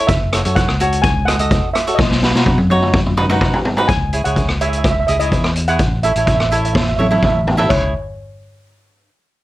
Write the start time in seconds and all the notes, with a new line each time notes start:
0.07 F#1 E5, kick, closed hi-hat
0.33 F#4 A4 C#5, cross-stick, closed hi-hat
0.45 F#2 F#4 A4 C#5, closed hi-hat
0.55 F#5, kick, closed hi-hat
0.68 C#2, cross-stick
0.80 F#4 A4 C#5, closed hi-hat
0.92 closed hi-hat
1.02 G#5, kick, closed hi-hat
1.25 F#4 A4 D#5 F#5, cross-stick, closed hi-hat
1.39 F#4 A4 D#5, closed hi-hat
1.51 kick, closed hi-hat
1.73 E5, cross-stick, closed hi-hat
1.87 F#4 A4 C#5, closed hi-hat
1.95 B1 D#5, kick
1.99 snare
2.11 snare
2.23 D#4 F#4 B4, snare
2.34 B2 D#4 F#4 B4, snare
2.46 kick, high tom
2.58 F#2, high tom
2.70 D#4 F#4 C#5, high tom
2.82 mid tom
2.94 kick, mid tom
3.06 mid tom
3.17 D#4 F#4 B4, mid tom
3.29 D#4 F#4 B4, mid tom
3.41 kick, mid tom
3.54 floor tom
3.65 floor tom
3.77 D#4 F#4 B4, floor tom
3.88 C#2 G#5, kick, closed hi-hat
4.13 E4 G#4 C#5, closed hi-hat
4.24 C#2 E4 G#4 C#5 F#5, closed hi-hat
4.36 kick, closed hi-hat
4.49 cross-stick
4.61 E4 G#4 C#5 E5, closed hi-hat
4.69 E5, closed hi-hat
4.78 E5
4.84 E5, kick, cross-stick, closed hi-hat
4.91 E5
5.00 E5
5.07 C#2 E4 G#4 D#5 E5, closed hi-hat
5.20 E4 G#4 C#5 D#5, closed hi-hat
5.32 E2, kick, closed hi-hat
5.44 cross-stick
5.56 closed hi-hat
5.67 E4 G#4 C#5 F#5, closed hi-hat
5.79 A1, kick, closed hi-hat
6.03 E4 A4 C#5 E5, closed hi-hat
6.12 A1 E5, closed hi-hat
6.16 E4 A4 C#5 E5
6.26 E5, kick, closed hi-hat
6.35 E5
6.40 E5, cross-stick
6.50 E4 A4 C#5 E5, closed hi-hat
6.58 E5
6.65 E5, closed hi-hat
6.73 E5, kick, snare
6.81 E5
6.89 E5
6.97 A1 E4 A4 C#5 E5, high tom
7.03 E5
7.11 E4 A4 C#5 E5, high tom
7.19 A1 E5
7.23 E5, kick, mid tom
7.33 E5
7.47 floor tom
7.57 E4 A4 E5, floor tom
7.69 C#2 E4 G#4 C#5, kick, crash